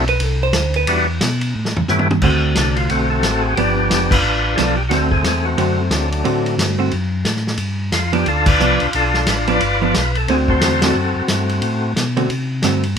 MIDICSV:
0, 0, Header, 1, 5, 480
1, 0, Start_track
1, 0, Tempo, 335383
1, 1267, Time_signature, 4, 2, 24, 8
1, 18588, End_track
2, 0, Start_track
2, 0, Title_t, "Tonewheel organ"
2, 0, Program_c, 0, 16
2, 1257, Note_on_c, 0, 55, 83
2, 1264, Note_on_c, 0, 62, 68
2, 1271, Note_on_c, 0, 64, 73
2, 1274, Note_on_c, 0, 59, 70
2, 1275, Note_on_c, 0, 66, 82
2, 1528, Note_off_c, 0, 55, 0
2, 1531, Note_off_c, 0, 62, 0
2, 1535, Note_off_c, 0, 64, 0
2, 1536, Note_off_c, 0, 59, 0
2, 1537, Note_off_c, 0, 66, 0
2, 2710, Note_on_c, 0, 59, 62
2, 2717, Note_on_c, 0, 61, 61
2, 2719, Note_on_c, 0, 57, 66
2, 2723, Note_on_c, 0, 64, 66
2, 2728, Note_on_c, 0, 67, 73
2, 2975, Note_off_c, 0, 59, 0
2, 2978, Note_off_c, 0, 61, 0
2, 2979, Note_off_c, 0, 57, 0
2, 2981, Note_off_c, 0, 64, 0
2, 2984, Note_off_c, 0, 67, 0
2, 3672, Note_on_c, 0, 62, 75
2, 3952, Note_on_c, 0, 65, 83
2, 3975, Note_off_c, 0, 62, 0
2, 4148, Note_off_c, 0, 65, 0
2, 4151, Note_on_c, 0, 66, 110
2, 4164, Note_on_c, 0, 57, 72
2, 4165, Note_on_c, 0, 60, 76
2, 4425, Note_off_c, 0, 66, 0
2, 4440, Note_on_c, 0, 69, 86
2, 4441, Note_off_c, 0, 60, 0
2, 4458, Note_on_c, 0, 60, 69
2, 4470, Note_on_c, 0, 66, 76
2, 4889, Note_on_c, 0, 68, 95
2, 4936, Note_off_c, 0, 69, 0
2, 5060, Note_off_c, 0, 57, 0
2, 5070, Note_off_c, 0, 60, 0
2, 5076, Note_off_c, 0, 66, 0
2, 5077, Note_off_c, 0, 68, 0
2, 5092, Note_on_c, 0, 67, 108
2, 5114, Note_on_c, 0, 59, 76
2, 5123, Note_on_c, 0, 62, 66
2, 5887, Note_on_c, 0, 71, 104
2, 5900, Note_off_c, 0, 67, 0
2, 5907, Note_off_c, 0, 62, 0
2, 5918, Note_on_c, 0, 65, 74
2, 5924, Note_on_c, 0, 62, 69
2, 6015, Note_off_c, 0, 59, 0
2, 6330, Note_off_c, 0, 71, 0
2, 6348, Note_on_c, 0, 71, 99
2, 6499, Note_off_c, 0, 71, 0
2, 6519, Note_on_c, 0, 68, 78
2, 6524, Note_on_c, 0, 69, 94
2, 6557, Note_off_c, 0, 68, 0
2, 6805, Note_off_c, 0, 65, 0
2, 6808, Note_off_c, 0, 62, 0
2, 6811, Note_off_c, 0, 69, 0
2, 6827, Note_on_c, 0, 67, 95
2, 6914, Note_off_c, 0, 67, 0
2, 7000, Note_on_c, 0, 66, 106
2, 7048, Note_on_c, 0, 57, 68
2, 7049, Note_on_c, 0, 60, 75
2, 7140, Note_off_c, 0, 66, 0
2, 7311, Note_on_c, 0, 68, 96
2, 7316, Note_off_c, 0, 60, 0
2, 7333, Note_on_c, 0, 60, 72
2, 7797, Note_on_c, 0, 66, 83
2, 7813, Note_off_c, 0, 68, 0
2, 7816, Note_off_c, 0, 57, 0
2, 7817, Note_off_c, 0, 60, 0
2, 7834, Note_on_c, 0, 57, 67
2, 7835, Note_on_c, 0, 60, 62
2, 8247, Note_off_c, 0, 66, 0
2, 8264, Note_on_c, 0, 66, 78
2, 8352, Note_off_c, 0, 66, 0
2, 8449, Note_on_c, 0, 62, 65
2, 8463, Note_off_c, 0, 57, 0
2, 8480, Note_on_c, 0, 57, 50
2, 8483, Note_on_c, 0, 54, 51
2, 8724, Note_off_c, 0, 60, 0
2, 9363, Note_off_c, 0, 62, 0
2, 9379, Note_off_c, 0, 57, 0
2, 9380, Note_off_c, 0, 54, 0
2, 11356, Note_on_c, 0, 65, 86
2, 11629, Note_off_c, 0, 65, 0
2, 11665, Note_on_c, 0, 67, 95
2, 11846, Note_off_c, 0, 67, 0
2, 11851, Note_on_c, 0, 69, 100
2, 11859, Note_on_c, 0, 62, 72
2, 11859, Note_on_c, 0, 65, 75
2, 12108, Note_off_c, 0, 65, 0
2, 12125, Note_on_c, 0, 65, 79
2, 12125, Note_on_c, 0, 74, 108
2, 12137, Note_on_c, 0, 71, 77
2, 12145, Note_off_c, 0, 69, 0
2, 12595, Note_off_c, 0, 71, 0
2, 12613, Note_on_c, 0, 71, 104
2, 12620, Note_off_c, 0, 74, 0
2, 12694, Note_off_c, 0, 71, 0
2, 12748, Note_off_c, 0, 62, 0
2, 12804, Note_off_c, 0, 65, 0
2, 12815, Note_on_c, 0, 62, 77
2, 12815, Note_on_c, 0, 69, 106
2, 12821, Note_on_c, 0, 65, 72
2, 13250, Note_off_c, 0, 69, 0
2, 13280, Note_on_c, 0, 71, 86
2, 13411, Note_off_c, 0, 71, 0
2, 13572, Note_off_c, 0, 65, 0
2, 13585, Note_on_c, 0, 74, 119
2, 13589, Note_on_c, 0, 65, 76
2, 13596, Note_on_c, 0, 71, 71
2, 13706, Note_off_c, 0, 62, 0
2, 14053, Note_off_c, 0, 74, 0
2, 14070, Note_on_c, 0, 74, 90
2, 14248, Note_off_c, 0, 74, 0
2, 14269, Note_off_c, 0, 71, 0
2, 14286, Note_on_c, 0, 71, 97
2, 14481, Note_off_c, 0, 65, 0
2, 14557, Note_on_c, 0, 69, 99
2, 14562, Note_off_c, 0, 71, 0
2, 14716, Note_on_c, 0, 60, 77
2, 14722, Note_on_c, 0, 68, 99
2, 14731, Note_off_c, 0, 69, 0
2, 14853, Note_off_c, 0, 68, 0
2, 15017, Note_on_c, 0, 66, 70
2, 15023, Note_on_c, 0, 69, 70
2, 15032, Note_on_c, 0, 72, 96
2, 15483, Note_off_c, 0, 60, 0
2, 15483, Note_off_c, 0, 66, 0
2, 15492, Note_off_c, 0, 69, 0
2, 15500, Note_on_c, 0, 66, 64
2, 15501, Note_on_c, 0, 60, 66
2, 15509, Note_on_c, 0, 69, 83
2, 15513, Note_off_c, 0, 72, 0
2, 15986, Note_off_c, 0, 69, 0
2, 16003, Note_on_c, 0, 69, 84
2, 16078, Note_off_c, 0, 69, 0
2, 16151, Note_off_c, 0, 60, 0
2, 16167, Note_on_c, 0, 57, 55
2, 16168, Note_on_c, 0, 60, 55
2, 16182, Note_off_c, 0, 66, 0
2, 16200, Note_on_c, 0, 66, 71
2, 17061, Note_off_c, 0, 57, 0
2, 17062, Note_off_c, 0, 60, 0
2, 17078, Note_off_c, 0, 66, 0
2, 18588, End_track
3, 0, Start_track
3, 0, Title_t, "Hollow-body jazz guitar"
3, 0, Program_c, 1, 26
3, 127, Note_on_c, 1, 71, 90
3, 330, Note_off_c, 1, 71, 0
3, 330, Note_on_c, 1, 69, 83
3, 605, Note_off_c, 1, 69, 0
3, 616, Note_on_c, 1, 72, 110
3, 1056, Note_off_c, 1, 72, 0
3, 1090, Note_on_c, 1, 71, 93
3, 1533, Note_off_c, 1, 71, 0
3, 3196, Note_on_c, 1, 50, 56
3, 3199, Note_on_c, 1, 57, 67
3, 3205, Note_on_c, 1, 60, 64
3, 3210, Note_on_c, 1, 66, 76
3, 4522, Note_off_c, 1, 50, 0
3, 4524, Note_off_c, 1, 57, 0
3, 4527, Note_off_c, 1, 60, 0
3, 4529, Note_off_c, 1, 66, 0
3, 5120, Note_on_c, 1, 53, 58
3, 5123, Note_on_c, 1, 59, 66
3, 5137, Note_on_c, 1, 62, 59
3, 5832, Note_off_c, 1, 53, 0
3, 5833, Note_off_c, 1, 59, 0
3, 5840, Note_off_c, 1, 62, 0
3, 6546, Note_on_c, 1, 53, 52
3, 6562, Note_on_c, 1, 59, 52
3, 6573, Note_on_c, 1, 62, 59
3, 6814, Note_off_c, 1, 53, 0
3, 6822, Note_off_c, 1, 59, 0
3, 6828, Note_off_c, 1, 62, 0
3, 7016, Note_on_c, 1, 50, 55
3, 7027, Note_on_c, 1, 57, 59
3, 7029, Note_on_c, 1, 60, 60
3, 7038, Note_on_c, 1, 66, 60
3, 7289, Note_off_c, 1, 50, 0
3, 7295, Note_off_c, 1, 57, 0
3, 7296, Note_off_c, 1, 60, 0
3, 7300, Note_off_c, 1, 66, 0
3, 7979, Note_on_c, 1, 50, 57
3, 7983, Note_on_c, 1, 57, 60
3, 7990, Note_on_c, 1, 60, 60
3, 7994, Note_on_c, 1, 66, 59
3, 8251, Note_off_c, 1, 50, 0
3, 8253, Note_off_c, 1, 57, 0
3, 8257, Note_off_c, 1, 60, 0
3, 8259, Note_off_c, 1, 66, 0
3, 8935, Note_on_c, 1, 50, 60
3, 8940, Note_on_c, 1, 57, 60
3, 8946, Note_on_c, 1, 60, 66
3, 8953, Note_on_c, 1, 66, 72
3, 9659, Note_off_c, 1, 50, 0
3, 9662, Note_off_c, 1, 57, 0
3, 9665, Note_off_c, 1, 60, 0
3, 9669, Note_off_c, 1, 66, 0
3, 9709, Note_on_c, 1, 50, 64
3, 9709, Note_on_c, 1, 57, 62
3, 9715, Note_on_c, 1, 60, 68
3, 9727, Note_on_c, 1, 66, 63
3, 9884, Note_off_c, 1, 50, 0
3, 9884, Note_off_c, 1, 57, 0
3, 9887, Note_off_c, 1, 60, 0
3, 9893, Note_off_c, 1, 66, 0
3, 11632, Note_on_c, 1, 53, 66
3, 11635, Note_on_c, 1, 59, 66
3, 11646, Note_on_c, 1, 62, 65
3, 11806, Note_off_c, 1, 53, 0
3, 11807, Note_off_c, 1, 59, 0
3, 11813, Note_off_c, 1, 62, 0
3, 12315, Note_on_c, 1, 53, 57
3, 12326, Note_on_c, 1, 59, 66
3, 12326, Note_on_c, 1, 62, 67
3, 12579, Note_off_c, 1, 53, 0
3, 12585, Note_off_c, 1, 59, 0
3, 12585, Note_off_c, 1, 62, 0
3, 13566, Note_on_c, 1, 59, 56
3, 13571, Note_on_c, 1, 53, 57
3, 13579, Note_on_c, 1, 62, 72
3, 13732, Note_off_c, 1, 59, 0
3, 13735, Note_off_c, 1, 53, 0
3, 13739, Note_off_c, 1, 62, 0
3, 14045, Note_on_c, 1, 53, 74
3, 14060, Note_on_c, 1, 59, 79
3, 14070, Note_on_c, 1, 62, 69
3, 14212, Note_off_c, 1, 53, 0
3, 14220, Note_off_c, 1, 59, 0
3, 14225, Note_off_c, 1, 62, 0
3, 14736, Note_on_c, 1, 57, 59
3, 14740, Note_on_c, 1, 60, 65
3, 14744, Note_on_c, 1, 50, 52
3, 14759, Note_on_c, 1, 66, 59
3, 15440, Note_off_c, 1, 57, 0
3, 15442, Note_off_c, 1, 60, 0
3, 15444, Note_off_c, 1, 50, 0
3, 15451, Note_off_c, 1, 66, 0
3, 15504, Note_on_c, 1, 57, 76
3, 15506, Note_on_c, 1, 50, 72
3, 15517, Note_on_c, 1, 60, 74
3, 15530, Note_on_c, 1, 66, 76
3, 15661, Note_off_c, 1, 57, 0
3, 15662, Note_off_c, 1, 50, 0
3, 15668, Note_off_c, 1, 60, 0
3, 15674, Note_off_c, 1, 66, 0
3, 17413, Note_on_c, 1, 50, 61
3, 17414, Note_on_c, 1, 60, 67
3, 17417, Note_on_c, 1, 57, 62
3, 17426, Note_on_c, 1, 66, 74
3, 17576, Note_off_c, 1, 50, 0
3, 17576, Note_off_c, 1, 60, 0
3, 17577, Note_off_c, 1, 57, 0
3, 17582, Note_off_c, 1, 66, 0
3, 18090, Note_on_c, 1, 50, 54
3, 18091, Note_on_c, 1, 57, 54
3, 18099, Note_on_c, 1, 60, 60
3, 18106, Note_on_c, 1, 66, 59
3, 18346, Note_off_c, 1, 50, 0
3, 18347, Note_off_c, 1, 57, 0
3, 18350, Note_off_c, 1, 60, 0
3, 18354, Note_off_c, 1, 66, 0
3, 18588, End_track
4, 0, Start_track
4, 0, Title_t, "Tonewheel organ"
4, 0, Program_c, 2, 16
4, 0, Note_on_c, 2, 35, 97
4, 288, Note_off_c, 2, 35, 0
4, 291, Note_on_c, 2, 36, 96
4, 764, Note_off_c, 2, 36, 0
4, 768, Note_on_c, 2, 38, 96
4, 1242, Note_off_c, 2, 38, 0
4, 1251, Note_on_c, 2, 40, 93
4, 1724, Note_off_c, 2, 40, 0
4, 1743, Note_on_c, 2, 47, 102
4, 2210, Note_off_c, 2, 47, 0
4, 2219, Note_on_c, 2, 45, 90
4, 2498, Note_off_c, 2, 45, 0
4, 2529, Note_on_c, 2, 45, 43
4, 2619, Note_off_c, 2, 45, 0
4, 2707, Note_on_c, 2, 43, 97
4, 3173, Note_off_c, 2, 43, 0
4, 3181, Note_on_c, 2, 38, 91
4, 3650, Note_off_c, 2, 38, 0
4, 3661, Note_on_c, 2, 36, 86
4, 4130, Note_off_c, 2, 36, 0
4, 4153, Note_on_c, 2, 35, 76
4, 4616, Note_off_c, 2, 35, 0
4, 4618, Note_on_c, 2, 33, 91
4, 5089, Note_off_c, 2, 33, 0
4, 5105, Note_on_c, 2, 31, 93
4, 5573, Note_off_c, 2, 31, 0
4, 5588, Note_on_c, 2, 29, 92
4, 6052, Note_on_c, 2, 33, 84
4, 6054, Note_off_c, 2, 29, 0
4, 6526, Note_off_c, 2, 33, 0
4, 6557, Note_on_c, 2, 35, 85
4, 7020, Note_off_c, 2, 35, 0
4, 7022, Note_on_c, 2, 38, 86
4, 7488, Note_on_c, 2, 40, 92
4, 7492, Note_off_c, 2, 38, 0
4, 7965, Note_off_c, 2, 40, 0
4, 7984, Note_on_c, 2, 42, 88
4, 8453, Note_off_c, 2, 42, 0
4, 8457, Note_on_c, 2, 38, 92
4, 8929, Note_off_c, 2, 38, 0
4, 8948, Note_on_c, 2, 45, 86
4, 9415, Note_off_c, 2, 45, 0
4, 9425, Note_on_c, 2, 43, 85
4, 9894, Note_off_c, 2, 43, 0
4, 9914, Note_on_c, 2, 42, 81
4, 10371, Note_on_c, 2, 45, 85
4, 10378, Note_off_c, 2, 42, 0
4, 10846, Note_on_c, 2, 43, 81
4, 10847, Note_off_c, 2, 45, 0
4, 11324, Note_off_c, 2, 43, 0
4, 11334, Note_on_c, 2, 41, 83
4, 11808, Note_off_c, 2, 41, 0
4, 11821, Note_on_c, 2, 38, 88
4, 12291, Note_off_c, 2, 38, 0
4, 12305, Note_on_c, 2, 36, 97
4, 12583, Note_off_c, 2, 36, 0
4, 12624, Note_on_c, 2, 36, 41
4, 12712, Note_off_c, 2, 36, 0
4, 12794, Note_on_c, 2, 35, 87
4, 13258, Note_off_c, 2, 35, 0
4, 13278, Note_on_c, 2, 33, 86
4, 13740, Note_off_c, 2, 33, 0
4, 13766, Note_on_c, 2, 31, 85
4, 14224, Note_off_c, 2, 31, 0
4, 14252, Note_on_c, 2, 35, 92
4, 14708, Note_off_c, 2, 35, 0
4, 14718, Note_on_c, 2, 38, 90
4, 15180, Note_off_c, 2, 38, 0
4, 15181, Note_on_c, 2, 40, 89
4, 15651, Note_off_c, 2, 40, 0
4, 15678, Note_on_c, 2, 42, 81
4, 15949, Note_off_c, 2, 42, 0
4, 15967, Note_on_c, 2, 42, 40
4, 16059, Note_off_c, 2, 42, 0
4, 16155, Note_on_c, 2, 43, 94
4, 16619, Note_off_c, 2, 43, 0
4, 16627, Note_on_c, 2, 45, 89
4, 17094, Note_off_c, 2, 45, 0
4, 17127, Note_on_c, 2, 47, 91
4, 17585, Note_off_c, 2, 47, 0
4, 17603, Note_on_c, 2, 48, 82
4, 18063, Note_off_c, 2, 48, 0
4, 18086, Note_on_c, 2, 43, 93
4, 18544, Note_off_c, 2, 43, 0
4, 18588, End_track
5, 0, Start_track
5, 0, Title_t, "Drums"
5, 109, Note_on_c, 9, 51, 53
5, 252, Note_off_c, 9, 51, 0
5, 283, Note_on_c, 9, 51, 68
5, 426, Note_off_c, 9, 51, 0
5, 758, Note_on_c, 9, 38, 72
5, 759, Note_on_c, 9, 44, 58
5, 759, Note_on_c, 9, 51, 75
5, 901, Note_off_c, 9, 38, 0
5, 902, Note_off_c, 9, 44, 0
5, 902, Note_off_c, 9, 51, 0
5, 1057, Note_on_c, 9, 51, 50
5, 1200, Note_off_c, 9, 51, 0
5, 1247, Note_on_c, 9, 51, 81
5, 1390, Note_off_c, 9, 51, 0
5, 1729, Note_on_c, 9, 38, 82
5, 1730, Note_on_c, 9, 44, 50
5, 1730, Note_on_c, 9, 51, 79
5, 1872, Note_off_c, 9, 38, 0
5, 1873, Note_off_c, 9, 44, 0
5, 1873, Note_off_c, 9, 51, 0
5, 2020, Note_on_c, 9, 51, 52
5, 2163, Note_off_c, 9, 51, 0
5, 2364, Note_on_c, 9, 38, 55
5, 2507, Note_off_c, 9, 38, 0
5, 2527, Note_on_c, 9, 43, 84
5, 2670, Note_off_c, 9, 43, 0
5, 2697, Note_on_c, 9, 48, 67
5, 2698, Note_on_c, 9, 44, 53
5, 2840, Note_off_c, 9, 48, 0
5, 2841, Note_off_c, 9, 44, 0
5, 2850, Note_on_c, 9, 48, 83
5, 2993, Note_off_c, 9, 48, 0
5, 3016, Note_on_c, 9, 48, 106
5, 3159, Note_off_c, 9, 48, 0
5, 3171, Note_on_c, 9, 49, 74
5, 3180, Note_on_c, 9, 36, 71
5, 3314, Note_off_c, 9, 49, 0
5, 3323, Note_off_c, 9, 36, 0
5, 3655, Note_on_c, 9, 38, 71
5, 3657, Note_on_c, 9, 44, 58
5, 3657, Note_on_c, 9, 51, 71
5, 3798, Note_off_c, 9, 38, 0
5, 3800, Note_off_c, 9, 44, 0
5, 3800, Note_off_c, 9, 51, 0
5, 3956, Note_on_c, 9, 51, 47
5, 4099, Note_off_c, 9, 51, 0
5, 4143, Note_on_c, 9, 51, 59
5, 4286, Note_off_c, 9, 51, 0
5, 4621, Note_on_c, 9, 38, 64
5, 4623, Note_on_c, 9, 44, 59
5, 4623, Note_on_c, 9, 51, 62
5, 4765, Note_off_c, 9, 38, 0
5, 4766, Note_off_c, 9, 44, 0
5, 4766, Note_off_c, 9, 51, 0
5, 5112, Note_on_c, 9, 51, 64
5, 5255, Note_off_c, 9, 51, 0
5, 5590, Note_on_c, 9, 38, 74
5, 5591, Note_on_c, 9, 44, 58
5, 5591, Note_on_c, 9, 51, 73
5, 5733, Note_off_c, 9, 38, 0
5, 5735, Note_off_c, 9, 44, 0
5, 5735, Note_off_c, 9, 51, 0
5, 5883, Note_on_c, 9, 36, 95
5, 5893, Note_on_c, 9, 49, 86
5, 6026, Note_off_c, 9, 36, 0
5, 6036, Note_off_c, 9, 49, 0
5, 6546, Note_on_c, 9, 38, 63
5, 6548, Note_on_c, 9, 44, 53
5, 6548, Note_on_c, 9, 51, 66
5, 6690, Note_off_c, 9, 38, 0
5, 6691, Note_off_c, 9, 44, 0
5, 6691, Note_off_c, 9, 51, 0
5, 7024, Note_on_c, 9, 38, 39
5, 7025, Note_on_c, 9, 51, 61
5, 7167, Note_off_c, 9, 38, 0
5, 7168, Note_off_c, 9, 51, 0
5, 7321, Note_on_c, 9, 36, 58
5, 7464, Note_off_c, 9, 36, 0
5, 7502, Note_on_c, 9, 38, 68
5, 7504, Note_on_c, 9, 44, 53
5, 7504, Note_on_c, 9, 51, 70
5, 7645, Note_off_c, 9, 38, 0
5, 7647, Note_off_c, 9, 44, 0
5, 7647, Note_off_c, 9, 51, 0
5, 7985, Note_on_c, 9, 51, 64
5, 8128, Note_off_c, 9, 51, 0
5, 8455, Note_on_c, 9, 38, 72
5, 8457, Note_on_c, 9, 44, 55
5, 8457, Note_on_c, 9, 51, 66
5, 8598, Note_off_c, 9, 38, 0
5, 8600, Note_off_c, 9, 44, 0
5, 8600, Note_off_c, 9, 51, 0
5, 8764, Note_on_c, 9, 51, 54
5, 8907, Note_off_c, 9, 51, 0
5, 8946, Note_on_c, 9, 51, 55
5, 9089, Note_off_c, 9, 51, 0
5, 9245, Note_on_c, 9, 51, 49
5, 9388, Note_off_c, 9, 51, 0
5, 9429, Note_on_c, 9, 38, 73
5, 9431, Note_on_c, 9, 44, 62
5, 9431, Note_on_c, 9, 51, 68
5, 9573, Note_off_c, 9, 38, 0
5, 9574, Note_off_c, 9, 44, 0
5, 9574, Note_off_c, 9, 51, 0
5, 9896, Note_on_c, 9, 51, 53
5, 10039, Note_off_c, 9, 51, 0
5, 10374, Note_on_c, 9, 38, 68
5, 10376, Note_on_c, 9, 44, 65
5, 10376, Note_on_c, 9, 51, 62
5, 10518, Note_off_c, 9, 38, 0
5, 10519, Note_off_c, 9, 44, 0
5, 10519, Note_off_c, 9, 51, 0
5, 10537, Note_on_c, 9, 38, 28
5, 10680, Note_off_c, 9, 38, 0
5, 10696, Note_on_c, 9, 38, 48
5, 10839, Note_off_c, 9, 38, 0
5, 10841, Note_on_c, 9, 51, 65
5, 10984, Note_off_c, 9, 51, 0
5, 11337, Note_on_c, 9, 38, 68
5, 11338, Note_on_c, 9, 44, 59
5, 11338, Note_on_c, 9, 51, 75
5, 11480, Note_off_c, 9, 38, 0
5, 11481, Note_off_c, 9, 44, 0
5, 11481, Note_off_c, 9, 51, 0
5, 11634, Note_on_c, 9, 51, 48
5, 11777, Note_off_c, 9, 51, 0
5, 11822, Note_on_c, 9, 51, 58
5, 11965, Note_off_c, 9, 51, 0
5, 12108, Note_on_c, 9, 49, 85
5, 12113, Note_on_c, 9, 36, 92
5, 12251, Note_off_c, 9, 49, 0
5, 12256, Note_off_c, 9, 36, 0
5, 12306, Note_on_c, 9, 44, 50
5, 12449, Note_off_c, 9, 44, 0
5, 12593, Note_on_c, 9, 51, 49
5, 12736, Note_off_c, 9, 51, 0
5, 12780, Note_on_c, 9, 51, 66
5, 12923, Note_off_c, 9, 51, 0
5, 13082, Note_on_c, 9, 38, 47
5, 13225, Note_off_c, 9, 38, 0
5, 13259, Note_on_c, 9, 38, 75
5, 13261, Note_on_c, 9, 44, 59
5, 13261, Note_on_c, 9, 51, 80
5, 13402, Note_off_c, 9, 38, 0
5, 13404, Note_off_c, 9, 44, 0
5, 13404, Note_off_c, 9, 51, 0
5, 13559, Note_on_c, 9, 51, 48
5, 13702, Note_off_c, 9, 51, 0
5, 13748, Note_on_c, 9, 51, 61
5, 13891, Note_off_c, 9, 51, 0
5, 14230, Note_on_c, 9, 38, 71
5, 14232, Note_on_c, 9, 44, 57
5, 14232, Note_on_c, 9, 51, 63
5, 14374, Note_off_c, 9, 38, 0
5, 14375, Note_off_c, 9, 44, 0
5, 14375, Note_off_c, 9, 51, 0
5, 14530, Note_on_c, 9, 51, 52
5, 14673, Note_off_c, 9, 51, 0
5, 14715, Note_on_c, 9, 51, 60
5, 14858, Note_off_c, 9, 51, 0
5, 15004, Note_on_c, 9, 36, 64
5, 15147, Note_off_c, 9, 36, 0
5, 15189, Note_on_c, 9, 38, 71
5, 15191, Note_on_c, 9, 44, 56
5, 15191, Note_on_c, 9, 51, 81
5, 15332, Note_off_c, 9, 38, 0
5, 15334, Note_off_c, 9, 44, 0
5, 15334, Note_off_c, 9, 51, 0
5, 15483, Note_on_c, 9, 38, 88
5, 15484, Note_on_c, 9, 51, 72
5, 15626, Note_off_c, 9, 38, 0
5, 15627, Note_off_c, 9, 51, 0
5, 16145, Note_on_c, 9, 38, 65
5, 16146, Note_on_c, 9, 44, 52
5, 16146, Note_on_c, 9, 51, 66
5, 16288, Note_off_c, 9, 38, 0
5, 16289, Note_off_c, 9, 44, 0
5, 16289, Note_off_c, 9, 51, 0
5, 16449, Note_on_c, 9, 51, 49
5, 16592, Note_off_c, 9, 51, 0
5, 16626, Note_on_c, 9, 51, 65
5, 16769, Note_off_c, 9, 51, 0
5, 17123, Note_on_c, 9, 38, 69
5, 17124, Note_on_c, 9, 44, 62
5, 17124, Note_on_c, 9, 51, 65
5, 17266, Note_off_c, 9, 38, 0
5, 17267, Note_off_c, 9, 44, 0
5, 17267, Note_off_c, 9, 51, 0
5, 17417, Note_on_c, 9, 51, 48
5, 17560, Note_off_c, 9, 51, 0
5, 17599, Note_on_c, 9, 51, 55
5, 17743, Note_off_c, 9, 51, 0
5, 18068, Note_on_c, 9, 38, 70
5, 18069, Note_on_c, 9, 44, 57
5, 18069, Note_on_c, 9, 51, 71
5, 18211, Note_off_c, 9, 38, 0
5, 18212, Note_off_c, 9, 44, 0
5, 18212, Note_off_c, 9, 51, 0
5, 18368, Note_on_c, 9, 51, 50
5, 18511, Note_off_c, 9, 51, 0
5, 18588, End_track
0, 0, End_of_file